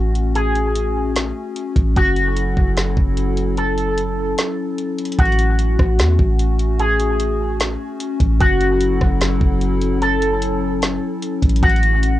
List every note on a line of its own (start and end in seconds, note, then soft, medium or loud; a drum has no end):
0.00 1.32 A1 loud
0.00 1.93 A3 medium
0.00 5.15 C#4 medium
0.00 0.31 F#4 loud
0.00 1.93 F#4 medium
0.15 closed hi-hat medium
0.35 1.12 G#4 medium
0.35 closed hi-hat medium
0.55 closed hi-hat medium
0.75 closed hi-hat medium
1.16 snare loud
1.16 closed hi-hat medium
1.56 closed hi-hat medium
1.76 1.95 A1 loud
1.76 kick loud
1.76 closed hi-hat medium
1.96 2.54 F#1 loud
1.96 5.15 F#3 medium
1.96 5.15 E4 medium
1.96 3.53 F#4 loud
1.96 5.15 A4 medium
1.96 kick loud
1.96 closed hi-hat medium
2.16 closed hi-hat medium
2.37 closed hi-hat medium
2.57 2.96 F#1 loud
2.57 kick medium
2.77 snare loud
2.77 closed hi-hat medium
2.97 4.34 F#1 loud
2.97 kick loud
3.17 closed hi-hat medium
3.37 closed hi-hat medium
3.57 4.34 A4 medium
3.57 closed hi-hat medium
3.78 closed hi-hat medium
3.98 closed hi-hat medium
4.38 snare loud
4.38 closed hi-hat medium
4.78 closed hi-hat medium
4.98 closed hi-hat medium
5.05 closed hi-hat medium
5.12 closed hi-hat medium
5.19 5.77 A1 loud
5.19 8.38 A3 medium
5.19 12.20 C#4 medium
5.19 6.76 F#4 loud
5.19 8.37 F#4 medium
5.19 kick loud
5.19 closed hi-hat medium
5.25 closed hi-hat soft
5.32 closed hi-hat soft
5.39 closed hi-hat medium
5.59 closed hi-hat medium
5.79 6.01 A1 loud
5.79 kick loud
5.79 cross-stick medium
5.99 6.18 E2 loud
5.99 snare loud
5.99 closed hi-hat medium
6.19 7.76 A1 loud
6.19 kick loud
6.39 closed hi-hat medium
6.59 closed hi-hat medium
6.80 7.56 G#4 medium
6.80 closed hi-hat medium
7.00 closed hi-hat medium
7.20 closed hi-hat medium
7.60 snare loud
7.60 closed hi-hat medium
8.00 closed hi-hat medium
8.20 8.40 A1 loud
8.20 kick loud
8.20 closed hi-hat medium
8.40 8.99 F#1 loud
8.40 11.60 F#3 medium
8.40 11.60 E4 medium
8.40 9.98 F#4 loud
8.40 11.60 A4 medium
8.40 kick loud
8.40 closed hi-hat medium
8.61 closed hi-hat medium
8.81 closed hi-hat medium
9.01 9.40 F#1 loud
9.01 kick medium
9.01 cross-stick medium
9.21 snare loud
9.21 closed hi-hat medium
9.41 10.98 F#1 loud
9.41 kick loud
9.61 closed hi-hat medium
9.81 closed hi-hat medium
10.02 10.78 A4 medium
10.02 closed hi-hat medium
10.22 closed hi-hat medium
10.42 closed hi-hat medium
10.82 snare loud
10.82 closed hi-hat medium
11.22 closed hi-hat medium
11.42 11.62 A1 loud
11.42 kick loud
11.42 closed hi-hat medium
11.49 closed hi-hat medium
11.56 closed hi-hat medium
11.63 12.20 A1 loud
11.63 12.20 A3 medium
11.63 12.20 F#4 loud
11.63 12.20 F#4 medium
11.63 kick loud
11.63 closed hi-hat soft
11.69 closed hi-hat soft
11.76 closed hi-hat soft
11.83 closed hi-hat medium
12.03 closed hi-hat medium